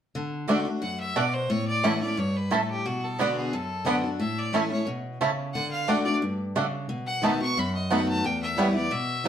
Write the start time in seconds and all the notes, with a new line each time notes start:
0.15 D3
0.48 D3 A3 D4 F#4 D5 F#5
0.65 D4 F#4
0.82 F#2 F#5
1.00 E5
1.16 B2 A3 D4 F#4 D5 F#5
1.33 C5
1.50 A2 C#5
1.68 D5
1.84 E3 A3 C#4 E4 C#5 F#5 A5
2.01 C#4 E4 D5
2.17 G2 C#5
2.36 B4
2.51 A2 A3 C#4 E4 A4 C#5 A5
2.70 G4
2.86 B2 F#4
3.04 A4
3.19 D3 B3 D4 F#4 B4 D5 F#5
3.37 G#4
3.53 F#2 A4
3.85 D3 B3 D4 F#4 D5 F#5
4.03 D4 F#4
4.20 A2 E5
4.38 D5
4.53 E3 A3 C#4 E4 C#5 A5
4.70 C#4 E4 C#5
4.87 B2
5.21 C#3 A3 C#4 E4 C#5 A5
5.53 D3 F#5
5.71 F5
5.88 D3 A3 D4 F#4 D5 F#5
6.04 D4 F#4 D5
6.22 G2
6.55 C#3 A3 D4 F#4 D5 F#5
6.89 B2
7.06 F#5
7.22 D#3 A3 B3 D#4 F#4 D#5 A5
7.41 B3 F#4 C#6
7.57 F#2 B5
7.75 D#5
7.90 D#3 A3 B3 D#4 F#4 D#5 F#5 A5
8.08 A5
8.24 E2 G5
8.42 E5
8.57 E3 G3 B3 E4 B4 C#5 G5
8.74 B3 E4 D5
8.91 B2 E5
9.24 E3